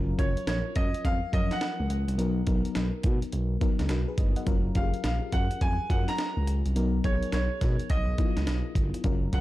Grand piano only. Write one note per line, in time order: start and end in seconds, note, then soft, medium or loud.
0.19 0.46 C#5 medium
0.47 0.77 C#5 medium
0.76 1.05 D#5 medium
1.05 1.31 F5 loud
1.34 1.52 D#5 medium
1.52 1.88 F#5 medium
4.76 5.03 F5 medium
5.05 5.34 F5 medium
5.33 5.59 F#5 medium
5.62 5.91 G#5 loud
5.90 6.09 F#5 medium
6.08 6.45 A#5 medium
7.05 7.32 C#5 medium
7.33 7.92 C#5 medium
7.90 8.72 D#5 medium
9.34 9.41 F#5 medium